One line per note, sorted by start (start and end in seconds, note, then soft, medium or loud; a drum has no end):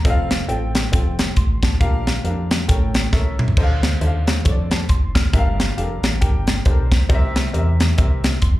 0.00 0.29 A#5 medium
0.05 0.42 F1 medium
0.05 0.39 C4 loud
0.05 0.39 F4 medium
0.05 0.39 A4 medium
0.05 0.11 D#5 medium
0.05 kick loud
0.05 closed hi-hat medium
0.10 0.42 F5 loud
0.31 snare medium
0.31 closed hi-hat medium
0.48 0.86 A1 medium
0.48 0.83 C4 medium
0.48 0.83 F4 medium
0.48 0.83 A4 medium
0.48 0.83 G5 medium
0.48 closed hi-hat medium
0.75 snare loud
0.75 closed hi-hat medium
0.92 1.30 F1 medium
0.92 1.27 C4 medium
0.92 1.27 F4 medium
0.92 1.27 A4 medium
0.92 1.27 G5 medium
0.92 kick loud
0.92 closed hi-hat loud
1.19 snare loud
1.19 closed hi-hat medium
1.36 1.74 A1 medium
1.36 1.62 C6 medium
1.36 kick medium
1.36 closed hi-hat medium
1.63 2.05 A5 medium
1.63 kick medium
1.63 snare loud
1.63 closed hi-hat medium
1.80 2.18 A#1 medium
1.80 2.47 A#2 medium
1.80 2.15 D4 medium
1.80 2.15 G4 medium
1.80 2.15 A#4 medium
1.80 2.15 F5 loud
1.80 kick loud
1.80 closed hi-hat medium
2.07 snare medium
2.07 closed hi-hat medium
2.24 2.62 F2 medium
2.24 2.31 C4 medium
2.24 2.59 G4 medium
2.24 2.59 A#4 medium
2.24 2.59 F5 medium
2.24 closed hi-hat medium
2.30 2.62 D4 medium
2.51 snare loud
2.51 closed hi-hat medium
2.68 3.06 A1 medium
2.68 3.35 A2 medium
2.68 3.03 C#4 medium
2.68 3.03 A4 medium
2.68 3.03 A#4 medium
2.68 3.03 G5 medium
2.68 kick loud
2.68 closed hi-hat loud
2.94 snare loud
2.94 closed hi-hat medium
3.13 3.50 C#2 medium
3.13 3.47 C#4 medium
3.13 3.47 A4 medium
3.13 3.47 A#4 medium
3.13 3.47 E5 medium
3.13 kick medium
3.13 snare medium
3.39 mid tom medium
3.48 floor tom medium
3.57 3.94 D2 medium
3.57 4.24 D3 medium
3.57 3.92 D4 medium
3.57 3.92 A4 medium
3.57 3.92 C5 medium
3.57 3.63 D#5 medium
3.57 kick loud
3.57 crash medium
3.63 3.94 F5 loud
3.83 snare medium
3.83 closed hi-hat medium
4.01 4.38 D#2 medium
4.01 4.35 D4 medium
4.01 4.36 A4 medium
4.01 4.36 C5 medium
4.01 4.07 E5 medium
4.01 closed hi-hat medium
4.07 4.38 F5 medium
4.27 snare loud
4.27 closed hi-hat medium
4.45 4.83 F2 medium
4.45 4.79 D4 medium
4.45 4.79 A4 medium
4.45 4.79 C5 medium
4.45 4.51 C#5 medium
4.45 kick loud
4.45 closed hi-hat medium
4.50 4.82 D5 medium
4.71 4.88 A5 medium
4.71 snare medium
4.71 closed hi-hat medium
4.89 5.27 F#1 medium
4.89 5.14 C6 medium
4.89 kick medium
4.89 closed hi-hat medium
5.15 5.57 F6 medium
5.15 kick medium
5.15 snare loud
5.15 closed hi-hat medium
5.33 5.71 G1 medium
5.33 6.00 G2 medium
5.33 5.68 D4 medium
5.33 5.68 G4 medium
5.33 5.68 A#4 medium
5.33 5.40 E5 medium
5.33 kick loud
5.33 closed hi-hat medium
5.39 5.70 F5 loud
5.60 snare loud
5.60 closed hi-hat medium
5.77 6.00 F1 medium
5.77 6.12 D4 medium
5.77 6.12 G4 medium
5.77 5.84 A4 medium
5.77 6.12 F5 medium
5.77 closed hi-hat medium
5.83 6.15 A#4 medium
6.03 6.22 A1 medium
6.03 snare loud
6.03 closed hi-hat medium
6.21 6.59 G1 loud
6.21 6.56 D4 medium
6.21 6.56 G4 medium
6.21 6.56 A#4 medium
6.21 6.56 G5 medium
6.21 kick loud
6.21 closed hi-hat loud
6.47 snare loud
6.47 closed hi-hat medium
6.65 7.03 B1 medium
6.65 7.00 D4 medium
6.65 7.00 G4 medium
6.65 6.72 A4 medium
6.65 7.00 C5 medium
6.65 kick medium
6.65 closed hi-hat medium
6.71 7.03 A#4 medium
6.92 kick medium
6.92 snare loud
6.92 closed hi-hat medium
7.09 7.47 C2 medium
7.09 7.76 C3 medium
7.09 7.44 C4 loud
7.09 7.44 G4 medium
7.09 7.44 A#4 medium
7.09 7.16 D#5 medium
7.09 kick loud
7.09 closed hi-hat medium
7.14 7.47 E5 loud
7.36 snare loud
7.36 closed hi-hat medium
7.53 7.91 E2 medium
7.53 7.88 C4 medium
7.53 7.88 G4 medium
7.53 7.88 A#4 medium
7.53 7.60 D#5 medium
7.53 closed hi-hat medium
7.59 7.91 E5 medium
7.80 snare loud
7.80 closed hi-hat medium
7.97 8.36 C2 medium
7.97 8.32 C4 medium
7.97 8.32 G4 medium
7.97 8.32 A#4 medium
7.97 8.32 E5 medium
7.97 kick loud
7.97 closed hi-hat medium
8.24 snare loud
8.24 closed hi-hat medium
8.42 8.60 E1 medium
8.42 8.60 C6 medium
8.42 kick medium
8.42 closed hi-hat medium